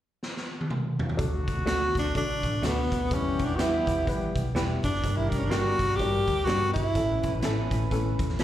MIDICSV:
0, 0, Header, 1, 7, 480
1, 0, Start_track
1, 0, Key_signature, 2, "major"
1, 0, Tempo, 480769
1, 1184, Time_signature, 4, 2, 24, 8
1, 8426, End_track
2, 0, Start_track
2, 0, Title_t, "Clean electric guitar"
2, 0, Program_c, 0, 27
2, 1661, Note_on_c, 0, 57, 64
2, 1669, Note_on_c, 0, 62, 76
2, 1676, Note_on_c, 0, 66, 71
2, 1801, Note_off_c, 0, 57, 0
2, 1805, Note_off_c, 0, 62, 0
2, 1808, Note_off_c, 0, 66, 0
2, 2619, Note_on_c, 0, 57, 69
2, 2628, Note_on_c, 0, 62, 79
2, 2633, Note_on_c, 0, 66, 87
2, 2761, Note_off_c, 0, 57, 0
2, 2765, Note_off_c, 0, 62, 0
2, 2768, Note_off_c, 0, 66, 0
2, 3580, Note_on_c, 0, 59, 70
2, 3589, Note_on_c, 0, 64, 78
2, 3595, Note_on_c, 0, 67, 84
2, 3722, Note_off_c, 0, 59, 0
2, 3726, Note_off_c, 0, 64, 0
2, 3729, Note_off_c, 0, 67, 0
2, 4542, Note_on_c, 0, 59, 66
2, 4550, Note_on_c, 0, 64, 80
2, 4557, Note_on_c, 0, 67, 81
2, 4682, Note_off_c, 0, 59, 0
2, 4686, Note_off_c, 0, 64, 0
2, 4690, Note_off_c, 0, 67, 0
2, 5500, Note_on_c, 0, 58, 71
2, 5508, Note_on_c, 0, 62, 76
2, 5517, Note_on_c, 0, 67, 81
2, 5641, Note_off_c, 0, 58, 0
2, 5645, Note_off_c, 0, 62, 0
2, 5650, Note_off_c, 0, 67, 0
2, 6456, Note_on_c, 0, 58, 64
2, 6465, Note_on_c, 0, 62, 71
2, 6472, Note_on_c, 0, 67, 77
2, 6598, Note_off_c, 0, 58, 0
2, 6603, Note_off_c, 0, 62, 0
2, 6606, Note_off_c, 0, 67, 0
2, 7416, Note_on_c, 0, 61, 63
2, 7425, Note_on_c, 0, 64, 64
2, 7435, Note_on_c, 0, 69, 69
2, 7557, Note_off_c, 0, 61, 0
2, 7562, Note_off_c, 0, 64, 0
2, 7567, Note_off_c, 0, 69, 0
2, 8385, Note_on_c, 0, 61, 68
2, 8395, Note_on_c, 0, 64, 69
2, 8426, Note_off_c, 0, 61, 0
2, 8426, Note_off_c, 0, 64, 0
2, 8426, End_track
3, 0, Start_track
3, 0, Title_t, "Tenor saxophone"
3, 0, Program_c, 1, 66
3, 1679, Note_on_c, 1, 66, 93
3, 1938, Note_off_c, 1, 66, 0
3, 1984, Note_on_c, 1, 62, 79
3, 2150, Note_off_c, 1, 62, 0
3, 2171, Note_on_c, 1, 62, 85
3, 2664, Note_on_c, 1, 59, 78
3, 2679, Note_off_c, 1, 62, 0
3, 3139, Note_on_c, 1, 61, 77
3, 3154, Note_off_c, 1, 59, 0
3, 3440, Note_on_c, 1, 62, 74
3, 3455, Note_off_c, 1, 61, 0
3, 3556, Note_on_c, 1, 66, 55
3, 3571, Note_off_c, 1, 62, 0
3, 3612, Note_on_c, 1, 64, 79
3, 3627, Note_off_c, 1, 66, 0
3, 4080, Note_off_c, 1, 64, 0
3, 4831, Note_on_c, 1, 62, 80
3, 5159, Note_on_c, 1, 64, 66
3, 5174, Note_off_c, 1, 62, 0
3, 5287, Note_on_c, 1, 62, 62
3, 5302, Note_off_c, 1, 64, 0
3, 5367, Note_on_c, 1, 61, 60
3, 5382, Note_off_c, 1, 62, 0
3, 5442, Note_on_c, 1, 62, 67
3, 5457, Note_off_c, 1, 61, 0
3, 5493, Note_on_c, 1, 66, 89
3, 5507, Note_off_c, 1, 62, 0
3, 5948, Note_on_c, 1, 67, 99
3, 5963, Note_off_c, 1, 66, 0
3, 6434, Note_on_c, 1, 66, 90
3, 6449, Note_off_c, 1, 67, 0
3, 6721, Note_off_c, 1, 66, 0
3, 6727, Note_on_c, 1, 64, 78
3, 7372, Note_off_c, 1, 64, 0
3, 8426, End_track
4, 0, Start_track
4, 0, Title_t, "Upright piano"
4, 0, Program_c, 2, 0
4, 1167, Note_on_c, 2, 54, 67
4, 1171, Note_on_c, 2, 62, 62
4, 1174, Note_on_c, 2, 69, 77
4, 1500, Note_off_c, 2, 54, 0
4, 1501, Note_off_c, 2, 62, 0
4, 1503, Note_off_c, 2, 69, 0
4, 1645, Note_on_c, 2, 54, 59
4, 1654, Note_on_c, 2, 62, 52
4, 1658, Note_on_c, 2, 69, 67
4, 1979, Note_off_c, 2, 54, 0
4, 1983, Note_off_c, 2, 62, 0
4, 1985, Note_off_c, 2, 69, 0
4, 2140, Note_on_c, 2, 54, 61
4, 2147, Note_on_c, 2, 62, 60
4, 2156, Note_on_c, 2, 69, 71
4, 2467, Note_off_c, 2, 54, 0
4, 2470, Note_off_c, 2, 62, 0
4, 2474, Note_off_c, 2, 69, 0
4, 2626, Note_on_c, 2, 54, 62
4, 2633, Note_on_c, 2, 62, 58
4, 2640, Note_on_c, 2, 69, 69
4, 2950, Note_off_c, 2, 54, 0
4, 2953, Note_off_c, 2, 62, 0
4, 2957, Note_off_c, 2, 69, 0
4, 3108, Note_on_c, 2, 55, 60
4, 3112, Note_on_c, 2, 71, 66
4, 3116, Note_on_c, 2, 64, 56
4, 3431, Note_off_c, 2, 55, 0
4, 3433, Note_off_c, 2, 71, 0
4, 3435, Note_off_c, 2, 64, 0
4, 3596, Note_on_c, 2, 55, 61
4, 3601, Note_on_c, 2, 64, 54
4, 3606, Note_on_c, 2, 71, 65
4, 3915, Note_off_c, 2, 55, 0
4, 3918, Note_off_c, 2, 64, 0
4, 3920, Note_off_c, 2, 71, 0
4, 4065, Note_on_c, 2, 64, 62
4, 4068, Note_on_c, 2, 55, 65
4, 4078, Note_on_c, 2, 71, 72
4, 4389, Note_off_c, 2, 64, 0
4, 4391, Note_off_c, 2, 55, 0
4, 4396, Note_off_c, 2, 71, 0
4, 4541, Note_on_c, 2, 55, 76
4, 4549, Note_on_c, 2, 64, 72
4, 4554, Note_on_c, 2, 71, 80
4, 4867, Note_off_c, 2, 55, 0
4, 4871, Note_off_c, 2, 64, 0
4, 4873, Note_off_c, 2, 71, 0
4, 5031, Note_on_c, 2, 55, 60
4, 5039, Note_on_c, 2, 62, 56
4, 5045, Note_on_c, 2, 70, 64
4, 5352, Note_off_c, 2, 55, 0
4, 5356, Note_off_c, 2, 62, 0
4, 5359, Note_off_c, 2, 70, 0
4, 5498, Note_on_c, 2, 55, 62
4, 5507, Note_on_c, 2, 62, 56
4, 5509, Note_on_c, 2, 70, 71
4, 5825, Note_off_c, 2, 55, 0
4, 5830, Note_off_c, 2, 62, 0
4, 5830, Note_off_c, 2, 70, 0
4, 5989, Note_on_c, 2, 55, 65
4, 5991, Note_on_c, 2, 62, 61
4, 6000, Note_on_c, 2, 70, 75
4, 6310, Note_off_c, 2, 55, 0
4, 6311, Note_off_c, 2, 62, 0
4, 6316, Note_off_c, 2, 70, 0
4, 6466, Note_on_c, 2, 55, 63
4, 6471, Note_on_c, 2, 62, 59
4, 6473, Note_on_c, 2, 70, 72
4, 6788, Note_off_c, 2, 55, 0
4, 6791, Note_off_c, 2, 62, 0
4, 6792, Note_off_c, 2, 70, 0
4, 6937, Note_on_c, 2, 52, 58
4, 6941, Note_on_c, 2, 61, 58
4, 6950, Note_on_c, 2, 69, 66
4, 7263, Note_off_c, 2, 52, 0
4, 7265, Note_off_c, 2, 61, 0
4, 7270, Note_off_c, 2, 69, 0
4, 7427, Note_on_c, 2, 52, 74
4, 7431, Note_on_c, 2, 61, 71
4, 7438, Note_on_c, 2, 69, 81
4, 7748, Note_off_c, 2, 52, 0
4, 7750, Note_off_c, 2, 61, 0
4, 7753, Note_off_c, 2, 69, 0
4, 7901, Note_on_c, 2, 52, 78
4, 7906, Note_on_c, 2, 61, 72
4, 7908, Note_on_c, 2, 69, 92
4, 8224, Note_off_c, 2, 52, 0
4, 8227, Note_off_c, 2, 61, 0
4, 8228, Note_off_c, 2, 69, 0
4, 8384, Note_on_c, 2, 52, 76
4, 8387, Note_on_c, 2, 61, 70
4, 8388, Note_on_c, 2, 66, 82
4, 8426, Note_off_c, 2, 52, 0
4, 8426, Note_off_c, 2, 61, 0
4, 8426, Note_off_c, 2, 66, 0
4, 8426, End_track
5, 0, Start_track
5, 0, Title_t, "Horn section"
5, 0, Program_c, 3, 61
5, 1173, Note_on_c, 3, 50, 73
5, 1175, Note_on_c, 3, 57, 67
5, 1178, Note_on_c, 3, 66, 83
5, 2872, Note_off_c, 3, 50, 0
5, 2873, Note_off_c, 3, 57, 0
5, 2874, Note_off_c, 3, 66, 0
5, 3086, Note_on_c, 3, 52, 73
5, 3086, Note_on_c, 3, 59, 73
5, 3088, Note_on_c, 3, 67, 85
5, 4787, Note_off_c, 3, 52, 0
5, 4787, Note_off_c, 3, 59, 0
5, 4788, Note_off_c, 3, 67, 0
5, 5033, Note_on_c, 3, 70, 79
5, 5034, Note_on_c, 3, 55, 79
5, 5040, Note_on_c, 3, 62, 72
5, 6719, Note_off_c, 3, 55, 0
5, 6719, Note_off_c, 3, 70, 0
5, 6722, Note_off_c, 3, 62, 0
5, 6930, Note_on_c, 3, 52, 73
5, 6930, Note_on_c, 3, 61, 74
5, 6930, Note_on_c, 3, 71, 77
5, 8426, Note_off_c, 3, 52, 0
5, 8426, Note_off_c, 3, 61, 0
5, 8426, Note_off_c, 3, 71, 0
5, 8426, End_track
6, 0, Start_track
6, 0, Title_t, "Fingered electric bass"
6, 0, Program_c, 4, 33
6, 1190, Note_on_c, 4, 38, 90
6, 1415, Note_off_c, 4, 38, 0
6, 1572, Note_on_c, 4, 38, 80
6, 1875, Note_off_c, 4, 38, 0
6, 1954, Note_on_c, 4, 38, 81
6, 2108, Note_off_c, 4, 38, 0
6, 2152, Note_on_c, 4, 50, 75
6, 2377, Note_off_c, 4, 50, 0
6, 2427, Note_on_c, 4, 33, 82
6, 2585, Note_off_c, 4, 33, 0
6, 2621, Note_on_c, 4, 38, 75
6, 2851, Note_off_c, 4, 38, 0
6, 2915, Note_on_c, 4, 38, 77
6, 3069, Note_off_c, 4, 38, 0
6, 3110, Note_on_c, 4, 40, 90
6, 3336, Note_off_c, 4, 40, 0
6, 3487, Note_on_c, 4, 40, 81
6, 3793, Note_off_c, 4, 40, 0
6, 3862, Note_on_c, 4, 40, 71
6, 4022, Note_off_c, 4, 40, 0
6, 4070, Note_on_c, 4, 52, 79
6, 4296, Note_off_c, 4, 52, 0
6, 4349, Note_on_c, 4, 35, 71
6, 4506, Note_off_c, 4, 35, 0
6, 4543, Note_on_c, 4, 28, 78
6, 4772, Note_off_c, 4, 28, 0
6, 4833, Note_on_c, 4, 30, 79
6, 4988, Note_off_c, 4, 30, 0
6, 5031, Note_on_c, 4, 31, 95
6, 5256, Note_off_c, 4, 31, 0
6, 5408, Note_on_c, 4, 31, 84
6, 5713, Note_off_c, 4, 31, 0
6, 5786, Note_on_c, 4, 31, 83
6, 5943, Note_off_c, 4, 31, 0
6, 5984, Note_on_c, 4, 43, 83
6, 6211, Note_off_c, 4, 43, 0
6, 6265, Note_on_c, 4, 38, 80
6, 6423, Note_off_c, 4, 38, 0
6, 6473, Note_on_c, 4, 43, 73
6, 6697, Note_off_c, 4, 43, 0
6, 6748, Note_on_c, 4, 31, 75
6, 6904, Note_off_c, 4, 31, 0
6, 6944, Note_on_c, 4, 33, 97
6, 7171, Note_off_c, 4, 33, 0
6, 7322, Note_on_c, 4, 33, 90
6, 7402, Note_off_c, 4, 33, 0
6, 7426, Note_on_c, 4, 33, 77
6, 7652, Note_off_c, 4, 33, 0
6, 7701, Note_on_c, 4, 45, 78
6, 7859, Note_off_c, 4, 45, 0
6, 7900, Note_on_c, 4, 45, 81
6, 8127, Note_off_c, 4, 45, 0
6, 8185, Note_on_c, 4, 40, 78
6, 8341, Note_off_c, 4, 40, 0
6, 8389, Note_on_c, 4, 35, 76
6, 8426, Note_off_c, 4, 35, 0
6, 8426, End_track
7, 0, Start_track
7, 0, Title_t, "Drums"
7, 227, Note_on_c, 9, 38, 50
7, 327, Note_off_c, 9, 38, 0
7, 371, Note_on_c, 9, 38, 44
7, 471, Note_off_c, 9, 38, 0
7, 606, Note_on_c, 9, 48, 57
7, 703, Note_on_c, 9, 47, 76
7, 706, Note_off_c, 9, 48, 0
7, 802, Note_off_c, 9, 47, 0
7, 993, Note_on_c, 9, 43, 92
7, 1092, Note_off_c, 9, 43, 0
7, 1092, Note_on_c, 9, 43, 78
7, 1187, Note_on_c, 9, 36, 94
7, 1187, Note_on_c, 9, 42, 87
7, 1192, Note_off_c, 9, 43, 0
7, 1287, Note_off_c, 9, 36, 0
7, 1287, Note_off_c, 9, 42, 0
7, 1475, Note_on_c, 9, 36, 84
7, 1475, Note_on_c, 9, 42, 54
7, 1575, Note_off_c, 9, 36, 0
7, 1575, Note_off_c, 9, 42, 0
7, 1667, Note_on_c, 9, 42, 95
7, 1671, Note_on_c, 9, 38, 99
7, 1767, Note_off_c, 9, 42, 0
7, 1771, Note_off_c, 9, 38, 0
7, 1949, Note_on_c, 9, 36, 80
7, 1965, Note_on_c, 9, 42, 66
7, 1971, Note_on_c, 9, 38, 33
7, 2049, Note_off_c, 9, 36, 0
7, 2065, Note_off_c, 9, 42, 0
7, 2070, Note_off_c, 9, 38, 0
7, 2148, Note_on_c, 9, 36, 80
7, 2149, Note_on_c, 9, 42, 68
7, 2248, Note_off_c, 9, 36, 0
7, 2249, Note_off_c, 9, 42, 0
7, 2430, Note_on_c, 9, 36, 83
7, 2435, Note_on_c, 9, 42, 58
7, 2529, Note_off_c, 9, 36, 0
7, 2535, Note_off_c, 9, 42, 0
7, 2626, Note_on_c, 9, 42, 83
7, 2631, Note_on_c, 9, 38, 88
7, 2726, Note_off_c, 9, 42, 0
7, 2731, Note_off_c, 9, 38, 0
7, 2914, Note_on_c, 9, 36, 90
7, 2921, Note_on_c, 9, 42, 64
7, 3014, Note_off_c, 9, 36, 0
7, 3020, Note_off_c, 9, 42, 0
7, 3105, Note_on_c, 9, 42, 89
7, 3106, Note_on_c, 9, 36, 92
7, 3204, Note_off_c, 9, 42, 0
7, 3206, Note_off_c, 9, 36, 0
7, 3386, Note_on_c, 9, 42, 56
7, 3391, Note_on_c, 9, 36, 80
7, 3486, Note_off_c, 9, 42, 0
7, 3491, Note_off_c, 9, 36, 0
7, 3583, Note_on_c, 9, 42, 96
7, 3587, Note_on_c, 9, 38, 97
7, 3683, Note_off_c, 9, 42, 0
7, 3686, Note_off_c, 9, 38, 0
7, 3866, Note_on_c, 9, 36, 86
7, 3876, Note_on_c, 9, 42, 67
7, 3966, Note_off_c, 9, 36, 0
7, 3976, Note_off_c, 9, 42, 0
7, 4067, Note_on_c, 9, 36, 82
7, 4076, Note_on_c, 9, 42, 68
7, 4167, Note_off_c, 9, 36, 0
7, 4176, Note_off_c, 9, 42, 0
7, 4349, Note_on_c, 9, 36, 90
7, 4359, Note_on_c, 9, 42, 59
7, 4449, Note_off_c, 9, 36, 0
7, 4459, Note_off_c, 9, 42, 0
7, 4550, Note_on_c, 9, 42, 76
7, 4555, Note_on_c, 9, 38, 88
7, 4650, Note_off_c, 9, 42, 0
7, 4655, Note_off_c, 9, 38, 0
7, 4832, Note_on_c, 9, 36, 89
7, 4835, Note_on_c, 9, 42, 62
7, 4931, Note_off_c, 9, 36, 0
7, 4935, Note_off_c, 9, 42, 0
7, 4939, Note_on_c, 9, 38, 28
7, 5028, Note_on_c, 9, 36, 93
7, 5031, Note_on_c, 9, 42, 91
7, 5039, Note_off_c, 9, 38, 0
7, 5128, Note_off_c, 9, 36, 0
7, 5131, Note_off_c, 9, 42, 0
7, 5311, Note_on_c, 9, 42, 57
7, 5312, Note_on_c, 9, 36, 83
7, 5410, Note_off_c, 9, 42, 0
7, 5412, Note_off_c, 9, 36, 0
7, 5503, Note_on_c, 9, 42, 97
7, 5507, Note_on_c, 9, 38, 105
7, 5603, Note_off_c, 9, 42, 0
7, 5607, Note_off_c, 9, 38, 0
7, 5784, Note_on_c, 9, 36, 81
7, 5789, Note_on_c, 9, 42, 70
7, 5795, Note_on_c, 9, 38, 33
7, 5884, Note_off_c, 9, 36, 0
7, 5889, Note_off_c, 9, 42, 0
7, 5894, Note_off_c, 9, 38, 0
7, 5985, Note_on_c, 9, 36, 80
7, 5986, Note_on_c, 9, 42, 65
7, 6084, Note_off_c, 9, 36, 0
7, 6085, Note_off_c, 9, 42, 0
7, 6267, Note_on_c, 9, 36, 84
7, 6268, Note_on_c, 9, 42, 59
7, 6366, Note_off_c, 9, 36, 0
7, 6368, Note_off_c, 9, 42, 0
7, 6461, Note_on_c, 9, 42, 78
7, 6466, Note_on_c, 9, 38, 92
7, 6561, Note_off_c, 9, 42, 0
7, 6566, Note_off_c, 9, 38, 0
7, 6748, Note_on_c, 9, 36, 92
7, 6749, Note_on_c, 9, 42, 65
7, 6848, Note_off_c, 9, 36, 0
7, 6849, Note_off_c, 9, 42, 0
7, 6939, Note_on_c, 9, 42, 89
7, 6941, Note_on_c, 9, 36, 96
7, 7039, Note_off_c, 9, 42, 0
7, 7041, Note_off_c, 9, 36, 0
7, 7220, Note_on_c, 9, 42, 58
7, 7226, Note_on_c, 9, 36, 81
7, 7319, Note_off_c, 9, 42, 0
7, 7326, Note_off_c, 9, 36, 0
7, 7410, Note_on_c, 9, 42, 94
7, 7414, Note_on_c, 9, 38, 98
7, 7510, Note_off_c, 9, 42, 0
7, 7514, Note_off_c, 9, 38, 0
7, 7700, Note_on_c, 9, 36, 80
7, 7706, Note_on_c, 9, 42, 69
7, 7800, Note_off_c, 9, 36, 0
7, 7805, Note_off_c, 9, 42, 0
7, 7901, Note_on_c, 9, 36, 80
7, 7904, Note_on_c, 9, 42, 65
7, 8000, Note_off_c, 9, 36, 0
7, 8004, Note_off_c, 9, 42, 0
7, 8179, Note_on_c, 9, 36, 89
7, 8181, Note_on_c, 9, 42, 61
7, 8276, Note_on_c, 9, 38, 32
7, 8279, Note_off_c, 9, 36, 0
7, 8281, Note_off_c, 9, 42, 0
7, 8374, Note_on_c, 9, 42, 79
7, 8376, Note_off_c, 9, 38, 0
7, 8378, Note_on_c, 9, 38, 94
7, 8426, Note_off_c, 9, 38, 0
7, 8426, Note_off_c, 9, 42, 0
7, 8426, End_track
0, 0, End_of_file